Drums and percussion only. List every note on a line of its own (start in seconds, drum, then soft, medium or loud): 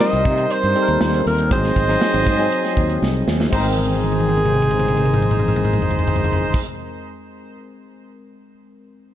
0.00 snare loud
0.00 shaker medium
0.13 closed hi-hat medium
0.13 shaker medium
0.25 kick loud
0.25 closed hi-hat medium
0.25 shaker medium
0.38 closed hi-hat medium
0.38 shaker medium
0.50 closed hi-hat medium
0.50 shaker medium
0.63 closed hi-hat medium
0.63 shaker medium
0.76 closed hi-hat medium
0.88 closed hi-hat soft
0.88 shaker soft
1.01 snare loud
1.01 shaker medium
1.13 closed hi-hat medium
1.13 shaker medium
1.26 open hi-hat medium
1.26 shaker soft
1.38 closed hi-hat medium
1.38 shaker soft
1.51 kick loud
1.51 closed hi-hat medium
1.51 shaker medium
1.64 snare soft
1.64 closed hi-hat medium
1.64 shaker medium
1.76 kick medium
1.76 closed hi-hat medium
1.76 shaker soft
1.88 snare soft
1.88 closed hi-hat soft
1.88 shaker soft
2.01 snare loud
2.01 shaker medium
2.14 closed hi-hat medium
2.14 shaker medium
2.27 kick loud
2.27 closed hi-hat medium
2.27 shaker medium
2.39 closed hi-hat medium
2.39 shaker soft
2.52 closed hi-hat medium
2.52 shaker medium
2.64 snare soft
2.64 closed hi-hat medium
2.64 shaker soft
2.77 kick medium
2.77 closed hi-hat medium
2.90 closed hi-hat soft
2.90 shaker soft
3.03 snare medium
3.03 shaker medium
3.15 shaker soft
3.28 snare medium
3.28 shaker soft
3.40 snare medium
3.40 shaker soft
3.53 kick loud
3.53 crash loud
3.53 shaker medium
3.78 high tom soft
3.87 high tom soft
3.95 high tom soft
4.03 high tom medium
4.12 high tom medium
4.20 high tom medium
4.29 high tom medium
4.37 high tom medium
4.45 mid tom medium
4.54 mid tom medium
4.62 mid tom medium
4.71 mid tom medium
4.80 mid tom medium
4.88 mid tom medium
4.97 mid tom medium
5.05 mid tom medium
5.14 mid tom medium
5.22 mid tom medium
5.31 mid tom medium
5.39 mid tom medium
5.48 mid tom medium
5.56 mid tom medium
5.65 mid tom medium
5.73 mid tom medium
5.82 floor tom medium
5.91 floor tom medium
5.99 floor tom medium
6.08 floor tom medium
6.16 floor tom medium
6.24 floor tom medium
6.33 floor tom medium
6.54 kick loud
6.54 crash loud